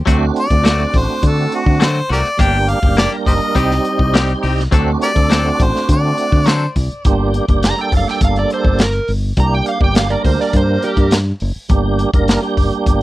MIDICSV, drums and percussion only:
0, 0, Header, 1, 2, 480
1, 0, Start_track
1, 0, Key_signature, -2, "minor"
1, 0, Tempo, 581959
1, 56, Time_signature, 4, 2, 24, 8
1, 10744, End_track
2, 0, Start_track
2, 0, Title_t, "Drums"
2, 58, Note_on_c, 9, 42, 81
2, 59, Note_on_c, 9, 36, 94
2, 141, Note_off_c, 9, 36, 0
2, 141, Note_off_c, 9, 42, 0
2, 298, Note_on_c, 9, 42, 59
2, 380, Note_off_c, 9, 42, 0
2, 413, Note_on_c, 9, 42, 41
2, 416, Note_on_c, 9, 36, 73
2, 495, Note_off_c, 9, 42, 0
2, 499, Note_off_c, 9, 36, 0
2, 534, Note_on_c, 9, 42, 83
2, 545, Note_on_c, 9, 38, 107
2, 617, Note_off_c, 9, 42, 0
2, 627, Note_off_c, 9, 38, 0
2, 772, Note_on_c, 9, 46, 71
2, 774, Note_on_c, 9, 36, 75
2, 854, Note_off_c, 9, 46, 0
2, 856, Note_off_c, 9, 36, 0
2, 1012, Note_on_c, 9, 42, 83
2, 1013, Note_on_c, 9, 36, 75
2, 1094, Note_off_c, 9, 42, 0
2, 1096, Note_off_c, 9, 36, 0
2, 1254, Note_on_c, 9, 42, 54
2, 1336, Note_off_c, 9, 42, 0
2, 1373, Note_on_c, 9, 36, 74
2, 1455, Note_off_c, 9, 36, 0
2, 1490, Note_on_c, 9, 42, 82
2, 1501, Note_on_c, 9, 38, 109
2, 1572, Note_off_c, 9, 42, 0
2, 1583, Note_off_c, 9, 38, 0
2, 1733, Note_on_c, 9, 46, 71
2, 1815, Note_off_c, 9, 46, 0
2, 1857, Note_on_c, 9, 42, 36
2, 1939, Note_off_c, 9, 42, 0
2, 1972, Note_on_c, 9, 36, 105
2, 1975, Note_on_c, 9, 42, 75
2, 2055, Note_off_c, 9, 36, 0
2, 2057, Note_off_c, 9, 42, 0
2, 2214, Note_on_c, 9, 42, 60
2, 2296, Note_off_c, 9, 42, 0
2, 2333, Note_on_c, 9, 36, 76
2, 2415, Note_off_c, 9, 36, 0
2, 2449, Note_on_c, 9, 42, 73
2, 2460, Note_on_c, 9, 38, 106
2, 2531, Note_off_c, 9, 42, 0
2, 2542, Note_off_c, 9, 38, 0
2, 2572, Note_on_c, 9, 42, 34
2, 2654, Note_off_c, 9, 42, 0
2, 2692, Note_on_c, 9, 36, 73
2, 2695, Note_on_c, 9, 46, 70
2, 2775, Note_off_c, 9, 36, 0
2, 2778, Note_off_c, 9, 46, 0
2, 2816, Note_on_c, 9, 42, 35
2, 2899, Note_off_c, 9, 42, 0
2, 2932, Note_on_c, 9, 36, 74
2, 2933, Note_on_c, 9, 42, 78
2, 3014, Note_off_c, 9, 36, 0
2, 3015, Note_off_c, 9, 42, 0
2, 3059, Note_on_c, 9, 38, 34
2, 3142, Note_off_c, 9, 38, 0
2, 3173, Note_on_c, 9, 42, 55
2, 3255, Note_off_c, 9, 42, 0
2, 3292, Note_on_c, 9, 36, 79
2, 3375, Note_off_c, 9, 36, 0
2, 3416, Note_on_c, 9, 42, 82
2, 3426, Note_on_c, 9, 38, 109
2, 3498, Note_off_c, 9, 42, 0
2, 3509, Note_off_c, 9, 38, 0
2, 3536, Note_on_c, 9, 42, 36
2, 3619, Note_off_c, 9, 42, 0
2, 3655, Note_on_c, 9, 46, 69
2, 3737, Note_off_c, 9, 46, 0
2, 3779, Note_on_c, 9, 42, 38
2, 3789, Note_on_c, 9, 38, 32
2, 3861, Note_off_c, 9, 42, 0
2, 3872, Note_off_c, 9, 38, 0
2, 3895, Note_on_c, 9, 42, 84
2, 3896, Note_on_c, 9, 36, 97
2, 3978, Note_off_c, 9, 36, 0
2, 3978, Note_off_c, 9, 42, 0
2, 4137, Note_on_c, 9, 42, 62
2, 4220, Note_off_c, 9, 42, 0
2, 4255, Note_on_c, 9, 42, 36
2, 4256, Note_on_c, 9, 36, 81
2, 4338, Note_off_c, 9, 42, 0
2, 4339, Note_off_c, 9, 36, 0
2, 4374, Note_on_c, 9, 42, 85
2, 4385, Note_on_c, 9, 38, 100
2, 4457, Note_off_c, 9, 42, 0
2, 4468, Note_off_c, 9, 38, 0
2, 4617, Note_on_c, 9, 36, 80
2, 4617, Note_on_c, 9, 42, 61
2, 4699, Note_off_c, 9, 36, 0
2, 4699, Note_off_c, 9, 42, 0
2, 4749, Note_on_c, 9, 38, 33
2, 4831, Note_off_c, 9, 38, 0
2, 4855, Note_on_c, 9, 42, 88
2, 4857, Note_on_c, 9, 36, 68
2, 4938, Note_off_c, 9, 42, 0
2, 4939, Note_off_c, 9, 36, 0
2, 5094, Note_on_c, 9, 42, 59
2, 5177, Note_off_c, 9, 42, 0
2, 5216, Note_on_c, 9, 36, 75
2, 5298, Note_off_c, 9, 36, 0
2, 5332, Note_on_c, 9, 42, 82
2, 5343, Note_on_c, 9, 38, 101
2, 5414, Note_off_c, 9, 42, 0
2, 5425, Note_off_c, 9, 38, 0
2, 5573, Note_on_c, 9, 46, 69
2, 5575, Note_on_c, 9, 36, 73
2, 5655, Note_off_c, 9, 46, 0
2, 5658, Note_off_c, 9, 36, 0
2, 5697, Note_on_c, 9, 42, 36
2, 5779, Note_off_c, 9, 42, 0
2, 5812, Note_on_c, 9, 42, 73
2, 5815, Note_on_c, 9, 36, 102
2, 5895, Note_off_c, 9, 42, 0
2, 5898, Note_off_c, 9, 36, 0
2, 6054, Note_on_c, 9, 42, 58
2, 6136, Note_off_c, 9, 42, 0
2, 6172, Note_on_c, 9, 42, 33
2, 6174, Note_on_c, 9, 36, 75
2, 6255, Note_off_c, 9, 42, 0
2, 6257, Note_off_c, 9, 36, 0
2, 6291, Note_on_c, 9, 42, 79
2, 6302, Note_on_c, 9, 38, 103
2, 6373, Note_off_c, 9, 42, 0
2, 6384, Note_off_c, 9, 38, 0
2, 6416, Note_on_c, 9, 42, 37
2, 6498, Note_off_c, 9, 42, 0
2, 6534, Note_on_c, 9, 36, 75
2, 6536, Note_on_c, 9, 46, 68
2, 6617, Note_off_c, 9, 36, 0
2, 6618, Note_off_c, 9, 46, 0
2, 6653, Note_on_c, 9, 42, 34
2, 6664, Note_on_c, 9, 38, 31
2, 6736, Note_off_c, 9, 42, 0
2, 6747, Note_off_c, 9, 38, 0
2, 6770, Note_on_c, 9, 42, 81
2, 6772, Note_on_c, 9, 36, 80
2, 6852, Note_off_c, 9, 42, 0
2, 6854, Note_off_c, 9, 36, 0
2, 6895, Note_on_c, 9, 42, 36
2, 6977, Note_off_c, 9, 42, 0
2, 7012, Note_on_c, 9, 42, 53
2, 7095, Note_off_c, 9, 42, 0
2, 7130, Note_on_c, 9, 36, 75
2, 7213, Note_off_c, 9, 36, 0
2, 7247, Note_on_c, 9, 42, 79
2, 7257, Note_on_c, 9, 38, 108
2, 7329, Note_off_c, 9, 42, 0
2, 7340, Note_off_c, 9, 38, 0
2, 7366, Note_on_c, 9, 42, 35
2, 7449, Note_off_c, 9, 42, 0
2, 7488, Note_on_c, 9, 46, 72
2, 7570, Note_off_c, 9, 46, 0
2, 7726, Note_on_c, 9, 42, 79
2, 7729, Note_on_c, 9, 36, 99
2, 7809, Note_off_c, 9, 42, 0
2, 7812, Note_off_c, 9, 36, 0
2, 7967, Note_on_c, 9, 42, 62
2, 8049, Note_off_c, 9, 42, 0
2, 8088, Note_on_c, 9, 36, 82
2, 8171, Note_off_c, 9, 36, 0
2, 8207, Note_on_c, 9, 42, 87
2, 8217, Note_on_c, 9, 38, 105
2, 8289, Note_off_c, 9, 42, 0
2, 8300, Note_off_c, 9, 38, 0
2, 8330, Note_on_c, 9, 42, 38
2, 8413, Note_off_c, 9, 42, 0
2, 8450, Note_on_c, 9, 36, 75
2, 8451, Note_on_c, 9, 46, 69
2, 8533, Note_off_c, 9, 36, 0
2, 8534, Note_off_c, 9, 46, 0
2, 8581, Note_on_c, 9, 38, 30
2, 8663, Note_off_c, 9, 38, 0
2, 8686, Note_on_c, 9, 42, 87
2, 8688, Note_on_c, 9, 36, 69
2, 8768, Note_off_c, 9, 42, 0
2, 8771, Note_off_c, 9, 36, 0
2, 8927, Note_on_c, 9, 42, 57
2, 9010, Note_off_c, 9, 42, 0
2, 9044, Note_on_c, 9, 42, 37
2, 9048, Note_on_c, 9, 36, 79
2, 9126, Note_off_c, 9, 42, 0
2, 9130, Note_off_c, 9, 36, 0
2, 9164, Note_on_c, 9, 42, 83
2, 9174, Note_on_c, 9, 38, 110
2, 9246, Note_off_c, 9, 42, 0
2, 9257, Note_off_c, 9, 38, 0
2, 9402, Note_on_c, 9, 46, 71
2, 9485, Note_off_c, 9, 46, 0
2, 9643, Note_on_c, 9, 42, 73
2, 9648, Note_on_c, 9, 36, 101
2, 9726, Note_off_c, 9, 42, 0
2, 9730, Note_off_c, 9, 36, 0
2, 9888, Note_on_c, 9, 42, 60
2, 9971, Note_off_c, 9, 42, 0
2, 10009, Note_on_c, 9, 36, 84
2, 10009, Note_on_c, 9, 42, 37
2, 10092, Note_off_c, 9, 36, 0
2, 10092, Note_off_c, 9, 42, 0
2, 10128, Note_on_c, 9, 42, 80
2, 10139, Note_on_c, 9, 38, 107
2, 10210, Note_off_c, 9, 42, 0
2, 10221, Note_off_c, 9, 38, 0
2, 10252, Note_on_c, 9, 42, 37
2, 10334, Note_off_c, 9, 42, 0
2, 10370, Note_on_c, 9, 36, 71
2, 10370, Note_on_c, 9, 46, 71
2, 10452, Note_off_c, 9, 36, 0
2, 10453, Note_off_c, 9, 46, 0
2, 10495, Note_on_c, 9, 42, 33
2, 10578, Note_off_c, 9, 42, 0
2, 10610, Note_on_c, 9, 36, 73
2, 10611, Note_on_c, 9, 42, 73
2, 10692, Note_off_c, 9, 36, 0
2, 10693, Note_off_c, 9, 42, 0
2, 10744, End_track
0, 0, End_of_file